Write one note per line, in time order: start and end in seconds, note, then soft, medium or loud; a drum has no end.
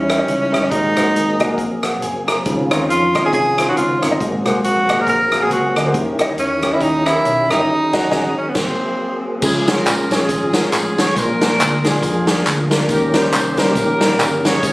0.00 0.21 E2 medium
0.00 0.70 G3 medium
0.00 0.69 C#4 medium
0.00 0.73 C#4 medium
0.00 0.67 D#4 medium
0.00 0.69 E4 medium
0.10 0.15 C#4 medium
0.10 0.15 E4 medium
0.10 0.15 G4 medium
0.10 0.15 E5 medium
0.10 cross-stick loud
0.10 closed hi-hat medium
0.18 0.30 C#4 medium
0.18 0.30 E4 soft
0.18 0.30 G4 medium
0.18 0.30 D#5 medium
0.28 0.55 C#2 medium
0.28 closed hi-hat medium
0.52 0.69 G1 medium
0.52 0.58 C#4 medium
0.52 0.58 E4 medium
0.52 0.58 G4 medium
0.52 0.58 E5 medium
0.52 cross-stick medium
0.52 closed hi-hat medium
0.62 0.71 C#4 medium
0.62 0.71 E4 medium
0.62 0.72 G4 soft
0.62 0.72 D#5 medium
0.70 0.93 G#1 medium
0.70 1.36 G#2 medium
0.70 2.44 F#3 medium
0.70 2.43 A#3 medium
0.70 5.90 C4 medium
0.70 1.58 D#4 loud
0.70 2.44 G#4 medium
0.70 kick loud
0.70 closed hi-hat medium
0.97 1.12 F#1 medium
0.97 1.07 A#3 medium
0.97 1.07 F#4 medium
0.97 1.08 G#4 medium
0.97 1.08 C5 medium
0.97 cross-stick loud
0.97 closed hi-hat medium
1.15 1.40 G#1 medium
1.15 closed hi-hat medium
1.40 1.56 C2 medium
1.40 1.46 A#3 medium
1.40 1.46 F#4 medium
1.40 1.46 G#4 medium
1.40 1.46 D#5 medium
1.40 kick medium
1.40 cross-stick medium
1.40 closed hi-hat medium
1.50 1.61 A#3 medium
1.50 1.61 F#4 medium
1.50 1.61 G#4 medium
1.50 1.61 A#4 medium
1.58 1.95 A#1 medium
1.58 kick loud
1.58 closed hi-hat medium
1.83 2.01 F#5 soft
1.83 cross-stick loud
1.83 closed hi-hat medium
2.02 2.40 F#1 medium
2.02 2.26 G#5 medium
2.02 closed hi-hat medium
2.27 2.69 A#5 soft
2.27 cross-stick loud
2.27 closed hi-hat medium
2.45 2.67 C#2 loud
2.45 3.11 C#3 medium
2.45 4.18 D#3 medium
2.45 4.18 C#4 medium
2.45 4.18 F4 medium
2.45 kick loud
2.45 closed hi-hat medium
2.71 2.91 D#2 medium
2.71 2.82 C4 medium
2.71 2.82 D#4 medium
2.71 2.82 F4 medium
2.71 2.82 C#5 medium
2.71 cross-stick loud
2.71 closed hi-hat medium
2.90 3.12 F2 medium
2.90 3.22 F4 medium
2.90 closed hi-hat medium
3.15 3.30 G#1 medium
3.15 3.20 C4 medium
3.15 3.20 D#4 medium
3.15 3.20 F4 medium
3.15 3.20 D#5 medium
3.15 kick medium
3.15 cross-stick loud
3.15 closed hi-hat medium
3.24 3.35 C4 medium
3.24 3.35 D#4 medium
3.24 3.35 F4 medium
3.24 3.33 G#4 medium
3.24 3.35 C#5 medium
3.33 3.70 C2 medium
3.33 3.65 G#4 medium
3.33 kick medium
3.33 closed hi-hat medium
3.58 3.64 C4 medium
3.58 3.64 D#4 medium
3.58 3.64 F4 medium
3.58 3.64 C5 medium
3.58 cross-stick loud
3.58 closed hi-hat medium
3.68 3.79 C4 medium
3.68 3.79 D#4 medium
3.68 3.79 F4 medium
3.68 3.76 F#4 medium
3.68 3.79 C#5 medium
3.77 3.99 C#2 medium
3.77 4.00 F4 medium
3.77 closed hi-hat medium
4.02 4.18 G1 medium
4.02 4.07 C4 medium
4.02 4.07 D#4 medium
4.02 4.07 F4 medium
4.02 4.07 C#5 medium
4.02 cross-stick loud
4.02 closed hi-hat medium
4.11 4.20 C4 medium
4.11 4.20 D#4 medium
4.11 4.20 F4 medium
4.11 4.20 D#5 medium
4.20 4.46 G#1 medium
4.20 4.85 G#2 medium
4.20 5.93 F#3 medium
4.20 5.93 A#3 medium
4.20 5.93 G#4 medium
4.20 kick loud
4.20 closed hi-hat medium
4.46 4.61 C2 medium
4.46 4.56 A#3 medium
4.46 4.56 F#4 medium
4.46 4.56 G#4 medium
4.46 4.57 C5 medium
4.46 cross-stick medium
4.46 closed hi-hat medium
4.64 4.85 A#1 medium
4.64 5.03 F#4 medium
4.64 closed hi-hat medium
4.89 5.04 G#1 medium
4.89 4.95 A#3 medium
4.89 4.95 F#4 medium
4.89 4.95 G#4 medium
4.89 4.95 D#5 medium
4.89 kick medium
4.89 cross-stick loud
4.89 closed hi-hat medium
4.99 5.10 A#3 medium
4.99 5.10 F#4 medium
4.99 5.10 G#4 medium
4.99 5.09 A#4 medium
4.99 5.10 C5 medium
5.07 5.44 A#1 medium
5.07 5.44 A#4 medium
5.07 kick medium
5.07 closed hi-hat medium
5.32 5.39 A#3 medium
5.32 5.38 F#4 medium
5.32 5.39 G#4 medium
5.32 5.39 A#4 medium
5.32 cross-stick loud
5.32 closed hi-hat medium
5.43 5.53 A#3 medium
5.43 5.53 F#4 medium
5.43 5.53 G#4 medium
5.43 5.51 G#4 medium
5.43 5.53 C5 medium
5.50 5.72 C#2 medium
5.50 5.75 F#4 medium
5.50 closed hi-hat medium
5.76 5.91 D2 medium
5.76 5.82 A#3 medium
5.76 5.82 F#4 medium
5.76 5.82 G#4 medium
5.76 5.82 D#5 medium
5.76 cross-stick loud
5.76 closed hi-hat medium
5.86 5.95 A#3 medium
5.86 5.95 F#4 medium
5.86 5.95 G#4 medium
5.86 5.95 C5 medium
5.94 6.16 D#2 medium
5.94 8.53 D#3 medium
5.94 6.60 D#3 medium
5.94 8.53 C#4 medium
5.94 7.67 E4 medium
5.94 7.67 G4 medium
5.94 kick loud
5.94 closed hi-hat medium
6.19 6.37 C#2 medium
6.19 6.31 C#4 medium
6.19 6.31 E4 medium
6.19 6.31 G4 medium
6.19 6.31 D#5 medium
6.19 cross-stick medium
6.19 closed hi-hat medium
6.37 6.74 E2 medium
6.37 6.74 C#4 medium
6.37 closed hi-hat medium
6.62 6.69 C#4 medium
6.62 6.69 E4 medium
6.62 6.69 G4 medium
6.62 6.69 C#5 medium
6.62 kick medium
6.62 cross-stick loud
6.62 closed hi-hat medium
6.73 6.84 C#4 medium
6.73 6.83 E4 medium
6.73 6.84 E4 medium
6.73 6.84 G4 medium
6.73 6.84 D#5 medium
6.80 7.18 D#2 medium
6.80 7.08 D#4 medium
6.80 kick loud
6.80 closed hi-hat medium
7.06 7.12 C#4 medium
7.06 7.50 E4 medium
7.06 7.12 E4 medium
7.06 7.12 G4 medium
7.06 7.12 C#5 medium
7.06 cross-stick loud
7.06 closed hi-hat medium
7.16 7.27 C#4 medium
7.16 7.27 E4 medium
7.16 7.27 G4 medium
7.16 7.27 A#4 medium
7.25 7.46 B1 medium
7.25 closed hi-hat medium
7.50 7.65 G1 medium
7.50 7.55 C#4 medium
7.50 8.34 D#4 medium
7.50 7.55 E4 medium
7.50 7.55 G4 medium
7.50 7.55 E5 medium
7.50 cross-stick loud
7.50 closed hi-hat medium
7.59 7.68 C#4 medium
7.59 7.69 E4 medium
7.59 7.69 G4 medium
7.59 7.68 D#5 medium
7.68 9.40 F#3 medium
7.68 8.54 G#4 medium
7.93 8.06 G#1 medium
7.93 8.06 C#4 medium
7.93 8.06 F#4 medium
7.93 8.06 G#4 medium
7.93 8.06 D#5 medium
7.93 kick medium
7.93 snare medium
7.93 crash medium
8.11 8.29 G#1 medium
8.11 8.28 C#4 medium
8.11 8.29 F#4 medium
8.11 8.29 G#4 medium
8.11 8.29 D#5 medium
8.11 kick loud
8.11 snare medium
8.38 8.50 C#4 medium
8.49 8.57 B3 soft
8.55 8.73 G#1 loud
8.55 9.42 A#3 medium
8.55 9.25 C4 medium
8.55 9.42 C4 medium
8.55 9.42 G#4 medium
8.55 kick medium
8.55 snare medium
8.55 crash medium
9.42 9.79 C#2 medium
9.42 10.07 C#3 medium
9.42 12.87 F3 medium
9.42 11.15 G#3 medium
9.42 9.68 C#4 medium
9.42 11.15 C#4 medium
9.42 9.68 F4 medium
9.42 12.87 G#4 medium
9.42 9.67 G#4 medium
9.42 kick loud
9.42 crash loud
9.42 tambourine medium
9.67 9.79 G#3 medium
9.67 9.79 C#4 medium
9.67 10.12 C#4 medium
9.67 9.79 F4 medium
9.67 10.11 F4 medium
9.67 10.12 A#4 medium
9.67 9.79 C#5 medium
9.67 snare loud
9.67 closed hi-hat medium
9.67 tambourine medium
9.86 10.23 A#1 medium
9.86 clap loud
9.86 closed hi-hat medium
9.86 tambourine loud
10.11 10.22 G#3 medium
10.11 10.22 C#4 medium
10.11 10.95 C#4 medium
10.11 10.22 F4 medium
10.11 10.95 F4 medium
10.11 11.00 G#4 medium
10.11 10.22 C#5 medium
10.11 kick medium
10.11 snare loud
10.11 closed hi-hat medium
10.11 tambourine medium
10.29 10.66 G#1 medium
10.29 kick loud
10.29 closed hi-hat medium
10.29 tambourine medium
10.53 10.66 G#3 medium
10.53 10.66 C#4 medium
10.53 10.66 F4 medium
10.53 10.66 A#4 medium
10.53 snare loud
10.53 closed hi-hat medium
10.53 tambourine medium
10.72 11.10 A1 medium
10.72 clap medium
10.72 closed hi-hat medium
10.72 tambourine medium
10.98 11.09 G#3 medium
10.98 11.09 C#4 medium
10.98 11.09 F4 medium
10.98 11.09 G#4 medium
10.98 11.17 C#5 loud
10.98 snare loud
10.98 closed hi-hat medium
10.98 tambourine medium
11.16 11.53 A#1 loud
11.16 11.81 A#2 medium
11.16 14.60 A#3 medium
11.16 12.88 D4 medium
11.16 11.42 D4 medium
11.16 11.42 F4 medium
11.16 11.43 A#4 medium
11.16 kick loud
11.16 closed hi-hat medium
11.16 tambourine medium
11.41 11.52 G#3 medium
11.41 11.52 D4 medium
11.41 11.84 D4 medium
11.41 11.52 F4 medium
11.41 11.84 F4 medium
11.41 11.52 A#4 medium
11.41 11.83 A#4 loud
11.41 snare loud
11.41 closed hi-hat medium
11.41 tambourine medium
11.60 12.03 D2 medium
11.60 clap loud
11.60 closed hi-hat medium
11.60 tambourine loud
11.84 11.95 G#3 medium
11.84 11.95 D4 medium
11.84 12.68 D4 medium
11.84 11.95 F4 medium
11.84 12.68 F4 medium
11.84 11.95 G#4 medium
11.84 12.73 G#4 medium
11.84 kick medium
11.84 snare loud
11.84 closed hi-hat medium
11.84 tambourine medium
12.03 12.40 F2 loud
12.03 kick loud
12.03 closed hi-hat medium
12.03 tambourine medium
12.27 12.39 G#3 medium
12.27 12.39 D4 medium
12.27 12.39 F4 medium
12.27 12.39 A#4 medium
12.27 snare loud
12.27 closed hi-hat medium
12.27 tambourine medium
12.46 12.83 D2 medium
12.46 clap medium
12.46 closed hi-hat medium
12.46 tambourine medium
12.71 12.82 G#3 medium
12.71 12.82 D4 medium
12.71 12.82 F4 medium
12.71 12.82 A#4 medium
12.71 snare loud
12.71 closed hi-hat medium
12.71 tambourine medium
12.89 13.33 D#2 loud
12.89 13.54 D#3 medium
12.89 14.60 D#3 medium
12.89 14.73 C#4 medium
12.89 13.57 C#4 medium
12.89 13.15 G4 medium
12.89 14.62 G4 medium
12.89 13.14 A#4 medium
12.89 kick loud
12.89 closed hi-hat medium
12.89 tambourine medium
13.14 13.25 G3 medium
13.14 13.25 C#4 medium
13.14 13.25 D#4 medium
13.14 13.57 G4 medium
13.14 13.25 A#4 medium
13.14 13.59 C5 medium
13.14 snare loud
13.14 closed hi-hat medium
13.14 tambourine medium
13.33 13.70 C2 medium
13.33 clap loud
13.33 closed hi-hat medium
13.33 tambourine loud
13.57 13.69 G3 medium
13.57 13.69 C#4 medium
13.57 14.41 C#4 medium
13.57 13.69 D#4 medium
13.57 14.41 G4 medium
13.57 14.44 A#4 loud
13.57 13.69 C5 medium
13.57 kick medium
13.57 snare loud
13.57 closed hi-hat medium
13.57 tambourine medium
13.75 14.13 A#1 loud
13.75 kick loud
13.75 closed hi-hat medium
13.75 tambourine medium
14.01 14.12 G3 medium
14.01 14.12 C#4 medium
14.01 14.12 D#4 medium
14.01 14.12 A#4 medium
14.01 snare loud
14.01 closed hi-hat medium
14.01 tambourine medium
14.19 14.56 G1 medium
14.19 clap medium
14.19 closed hi-hat medium
14.19 tambourine medium
14.44 14.55 G3 medium
14.44 14.55 C#4 medium
14.44 14.55 D#4 medium
14.44 14.73 G#4 medium
14.44 14.55 A#4 medium
14.44 14.73 C#5 loud
14.44 snare loud
14.44 closed hi-hat medium
14.44 tambourine medium
14.61 14.73 G#1 loud
14.61 14.73 G#2 medium
14.61 14.73 D#3 medium
14.61 14.73 G#3 medium
14.61 14.73 G#4 medium
14.61 kick loud
14.61 closed hi-hat medium
14.61 tambourine medium